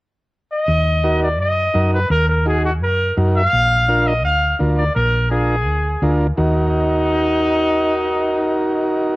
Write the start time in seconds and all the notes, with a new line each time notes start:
0.52 D#5
0.68 D#2
1.04 D#4 F#4 A#4
1.23 D5
1.39 F#2 D#5
1.74 F#2 D#4 F#4 A#4
1.94 B4
2.10 D#2 A#4
2.29 A#4
2.46 D#4 F#4 G#4
2.65 F#4
2.82 F#2 A#4
3.17 F#2 D#4 F#4 A#4
3.36 F5
3.53 A#1
3.88 D4 F4 A#4
4.07 D#5
4.25 D2 F5
4.59 D2 D4 F4 A#4
4.77 D5
4.95 A#1 A#4
5.31 D4 F4 G#4 A#4
5.67 D2
6.02 D2 D4 F4 A#4
6.37 D#2 D#4 F#4 A#4